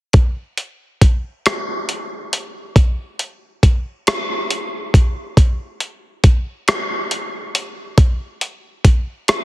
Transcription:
0.13 kick medium
0.13 closed hi-hat soft
0.57 closed hi-hat soft
1.01 kick medium
1.01 closed hi-hat medium
1.46 cross-stick medium
1.46 closed hi-hat soft
1.89 closed hi-hat soft
2.33 closed hi-hat medium
2.76 kick medium
2.76 closed hi-hat soft
3.19 closed hi-hat soft
3.63 kick medium
3.63 closed hi-hat medium
4.07 cross-stick medium
4.07 closed hi-hat soft
4.50 closed hi-hat medium
4.94 kick medium
4.94 closed hi-hat medium
5.37 kick medium
5.37 closed hi-hat medium
5.80 closed hi-hat soft
6.24 kick medium
6.24 closed hi-hat medium
6.68 cross-stick medium
6.68 closed hi-hat medium
7.11 closed hi-hat medium
7.55 closed hi-hat medium
7.98 kick medium
7.98 closed hi-hat medium
8.41 closed hi-hat soft
8.85 kick medium
8.85 closed hi-hat medium
9.28 cross-stick medium
9.28 closed hi-hat medium

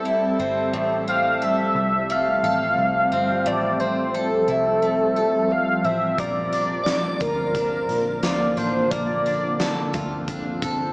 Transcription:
0.00 0.35 C2 medium
0.00 0.72 A2 medium
0.00 0.80 G3 medium
0.00 6.15 G3 medium
0.00 0.39 C4 soft
0.00 0.69 C4 medium
0.00 0.71 A4 medium
0.00 1.41 A4 medium
0.05 3.55 E4 medium
0.39 0.72 G1 medium
0.39 1.07 C4 medium
0.73 1.72 A1 medium
0.73 3.45 A2 medium
0.73 10.93 F3 medium
0.73 6.15 C4 medium
1.08 3.11 C4 soft
1.08 1.45 F5 loud
1.42 2.44 A4 medium
1.42 2.13 E5 loud
1.75 2.40 C2 medium
2.10 4.82 A3 medium
2.10 3.49 F5 loud
2.43 2.76 A1 medium
2.43 4.14 A4 medium
2.78 3.10 C2 medium
3.12 3.44 G1 medium
3.12 3.79 C4 medium
3.46 4.44 A1 medium
3.46 6.19 A2 medium
3.46 3.82 D5 loud
3.80 5.83 C4 soft
3.80 4.16 C5 medium
4.14 5.16 A4 medium
4.14 5.53 A4 medium
4.48 5.81 C2 medium
4.48 5.50 E4 medium
4.82 6.18 A3 medium
5.16 8.66 A4 medium
5.52 5.86 F5 loud
5.84 6.17 A1 medium
5.84 6.26 C4 soft
5.84 6.21 E5 medium
6.18 7.17 A#1 medium
6.18 10.93 D3 medium
6.18 8.89 A#3 medium
6.18 8.91 A#3 medium
6.18 7.23 D5 loud
6.18 kick medium
6.18 closed hi-hat medium
6.53 7.54 D4 medium
6.53 closed hi-hat soft
6.84 9.46 D5 medium
6.84 snare medium
6.84 closed hi-hat medium
7.20 7.86 D2 medium
7.20 8.22 F4 medium
7.20 8.25 A#4 medium
7.20 kick medium
7.20 closed hi-hat medium
7.55 8.56 D4 medium
7.55 kick medium
7.55 closed hi-hat medium
7.89 8.21 A#1 medium
7.89 closed hi-hat soft
8.23 8.56 D2 medium
8.23 9.93 F4 medium
8.23 8.59 D5 medium
8.23 snare medium
8.23 closed hi-hat medium
8.57 8.90 A1 medium
8.57 9.25 D4 medium
8.57 8.92 C5 medium
8.57 closed hi-hat soft
8.91 9.90 A#1 medium
8.91 10.93 A#3 medium
8.91 10.93 C4 medium
8.91 10.27 D5 loud
8.91 kick medium
8.91 closed hi-hat medium
9.26 10.27 D4 soft
9.26 closed hi-hat soft
9.60 10.61 A4 medium
9.60 snare loud
9.60 closed hi-hat medium
9.93 10.93 D2 medium
9.93 10.93 F4 soft
9.93 kick medium
9.93 closed hi-hat medium
10.28 10.93 D4 medium
10.28 kick medium
10.28 closed hi-hat medium
10.62 10.93 A4 medium
10.62 kick medium
10.62 closed hi-hat medium

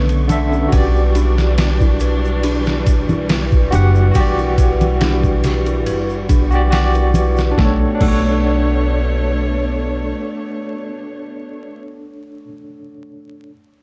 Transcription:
0.00 0.69 B1 medium
0.00 0.22 D3 medium
0.00 0.68 D3 medium
0.00 0.68 A3 medium
0.00 0.68 B3 loud
0.00 0.52 C#4 medium
0.00 0.25 A4 medium
0.00 0.74 A4 medium
0.00 0.72 B4 medium
0.00 0.27 C#5 medium
0.00 7.60 C#6 medium
0.09 ride soft
0.09 shaker soft
0.28 0.67 D3 loud
0.28 0.68 A4 medium
0.28 ride medium
0.28 low conga medium
0.28 shaker loud
0.32 0.69 E5 loud
0.52 0.70 C#4 medium
0.52 shaker soft
0.68 3.65 F#4 medium
0.68 0.94 B4 medium
0.68 kick loud
0.68 ride medium
0.72 3.05 B1 loud
0.72 7.54 E3 medium
0.72 7.54 G3 medium
0.72 4.12 D4 medium
0.72 3.68 G4 medium
0.72 shaker soft
0.78 3.70 D5 medium
0.96 shaker soft
1.15 1.37 D4 medium
1.15 ride medium
1.15 shaker medium
1.38 snare medium
1.38 shaker soft
1.58 snare loud
1.58 ride medium
1.58 shaker medium
1.81 1.99 E4 medium
1.81 kick loud
1.81 shaker soft
2.00 2.23 B4 medium
2.00 ride medium
2.00 shaker medium
2.25 shaker soft
2.43 2.65 D4 medium
2.43 ride medium
2.43 shaker soft
2.66 snare medium
2.66 shaker soft
2.86 kick loud
2.86 ride medium
2.86 shaker medium
3.09 3.69 B1 medium
3.09 3.27 E4 medium
3.09 low conga medium
3.09 shaker soft
3.29 3.51 B4 medium
3.29 snare loud
3.29 ride medium
3.29 shaker soft
3.51 kick loud
3.51 shaker soft
3.71 4.11 F#1 loud
3.71 3.94 D4 medium
3.71 4.10 F#4 medium
3.71 4.11 G4 medium
3.71 ride medium
3.71 shaker medium
3.75 4.12 F#5 loud
3.95 shaker soft
4.11 6.46 F#4 medium
4.11 kick loud
4.11 ride medium
4.11 shaker medium
4.16 5.87 B1 medium
4.16 6.48 G4 medium
4.20 6.50 D5 loud
4.38 4.56 E4 medium
4.38 shaker soft
4.58 4.80 B4 medium
4.58 kick loud
4.58 ride medium
4.58 shaker medium
4.81 ride soft
4.81 low conga medium
4.81 shaker soft
5.01 5.22 D4 medium
5.01 snare loud
5.01 ride medium
5.01 shaker medium
5.24 kick medium
5.24 shaker soft
5.44 snare medium
5.44 ride medium
5.44 shaker medium
5.66 5.85 E4 medium
5.66 ride soft
5.66 shaker soft
5.86 6.25 F#1 medium
5.86 6.08 B4 medium
5.86 ride medium
5.86 shaker medium
6.09 shaker soft
6.29 7.54 B1 medium
6.29 6.51 D4 medium
6.29 kick medium
6.29 ride medium
6.29 shaker medium
6.51 6.67 F#4 loud
6.51 6.68 G4 medium
6.51 shaker soft
6.55 6.69 D5 loud
6.70 7.12 F#4 medium
6.70 7.13 G4 medium
6.70 snare loud
6.70 ride medium
6.70 shaker medium
6.75 7.14 D5 loud
6.94 7.13 E4 medium
6.94 ride soft
6.94 shaker soft
7.14 7.37 B4 medium
7.14 ride medium
7.14 low conga medium
7.14 shaker loud
7.37 snare soft
7.37 shaker soft
7.51 7.79 D4 medium
7.57 7.83 B1 medium
7.57 11.76 B2 medium
7.57 11.77 A3 medium
7.57 7.83 A3 medium
7.57 11.77 D4 medium
7.57 7.83 A4 medium
7.57 11.77 C#5 loud
7.57 kick loud
7.57 snare medium
7.65 7.87 C#5 medium
7.95 12.44 D4 medium
8.00 10.11 B1 medium
8.00 8.25 A3 loud
8.00 12.47 A4 medium
8.00 kick loud
8.00 crash medium
8.08 12.50 C#5 medium

